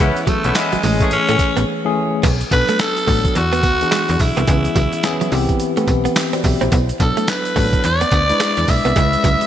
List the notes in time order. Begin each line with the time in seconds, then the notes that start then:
Already playing: E3 B3 C#4 G#4
0.00 C#2 E3 G#3 B3 C#4 E4
0.16 closed hi-hat, shaker
0.27 F#3 A3, kick, closed hi-hat, tambourine
0.44 B1 B3 C#4 E4, muted clean electric guitar stroke, closed hi-hat, shaker
0.55 G#3 B3 C#4 E4, muted clean electric guitar stroke, snare, clap, closed hi-hat, tambourine, shaker
0.72 A1 F#3, closed hi-hat, shaker
0.83 A1 E3 G#3 A3 C#4 G#4, open hi-hat, tambourine, shaker
1.00 A3 C#4 G#4, kick, closed hi-hat, shaker
1.11 A2 C#4, closed hi-hat, shaker
1.28 A2 A3, closed hi-hat, shaker
1.39 muted clean electric guitar stroke, kick, closed hi-hat, tambourine, shaker
1.57 A1 B3, closed hi-hat, shaker
1.85 E3 A3 C#4 G#4
2.23 B1 B3, kick, closed hi-hat, crash, tambourine, shaker
2.41 closed hi-hat, shaker
2.51 B1 F#3 B3 D4 A4 B4, muted clean electric guitar stroke, kick, closed hi-hat, tambourine
2.68 A3, closed hi-hat, shaker
2.79 A4, snare, clap, closed hi-hat, tambourine, shaker
2.97 closed hi-hat, shaker
3.07 A1 F#3 A3 B3 D4 A4, kick, open hi-hat, tambourine
3.25 kick, closed hi-hat, shaker
3.35 E2 F#4, muted clean electric guitar stroke, closed hi-hat, shaker
3.53 B3, closed hi-hat, shaker
3.63 D2 B3, kick, closed hi-hat, tambourine
3.81 E3 B3 D4 G#4, closed hi-hat, shaker
3.91 G#3, snare, clap, closed hi-hat, tambourine, shaker
4.09 E2, muted clean electric guitar stroke, closed hi-hat, shaker
4.19 B1 E4, kick, open hi-hat, tambourine, shaker
4.37 C2 B3, closed hi-hat, shaker
4.47 C#2 E3 G#3 B3 C#4 G#4, kick, closed hi-hat, tambourine, shaker
4.65 closed hi-hat, shaker
4.76 C#2 F#3, kick, closed hi-hat, tambourine
4.93 muted clean electric guitar stroke, closed hi-hat, shaker
5.03 E3 B3 C#4 G#4, muted clean electric guitar stroke, snare, clap, closed hi-hat, tambourine, shaker
5.21 F#3, closed hi-hat, shaker
5.32 C2 E3 G3 B3 C4 G4, open hi-hat, tambourine
5.49 kick, closed hi-hat, shaker
5.60 closed hi-hat, shaker
5.77 E3 A3 B3 C4 E4, closed hi-hat, shaker
5.87 B1, muted clean electric guitar stroke, kick, closed hi-hat, tambourine
6.05 B3, closed hi-hat, shaker
6.16 snare, clap, closed hi-hat, tambourine, shaker
6.33 C4 F#4 D5, closed hi-hat, shaker
6.44 B1 G4 E5, muted clean electric guitar stroke, kick, open hi-hat, tambourine, shaker
6.61 A#1 C4 E4 C5, closed hi-hat, shaker
6.72 B1 B3, kick, closed hi-hat, tambourine, shaker
6.89 closed hi-hat, shaker
7.00 B1 F#3 B3 D4 A4, muted clean electric guitar stroke, kick, closed hi-hat, tambourine
7.17 A3, closed hi-hat, shaker
7.28 B4, snare, clap, closed hi-hat, tambourine, shaker
7.45 closed hi-hat, shaker
7.56 A1 F#3 A3 B3 D4 A4, kick, open hi-hat, tambourine
7.73 kick, closed hi-hat, shaker
7.84 E2 D5, muted clean electric guitar stroke, closed hi-hat, shaker
8.01 B3, closed hi-hat, shaker
8.11 D2 B3, kick, closed hi-hat, tambourine
8.29 G#3 D4 E4 B4, closed hi-hat, shaker
8.40 G#3, snare, clap, closed hi-hat, tambourine, shaker
8.57 E2, muted clean electric guitar stroke, closed hi-hat, shaker
8.68 B1 E5, kick, open hi-hat, tambourine, shaker
8.85 C2 B3, closed hi-hat, shaker
8.96 C#2 G#3 C#4 E4 B4, kick, closed hi-hat, tambourine, shaker
9.13 closed hi-hat, shaker
9.24 C#2 F#3, kick, closed hi-hat, tambourine, shaker
9.41 muted clean electric guitar stroke, closed hi-hat, shaker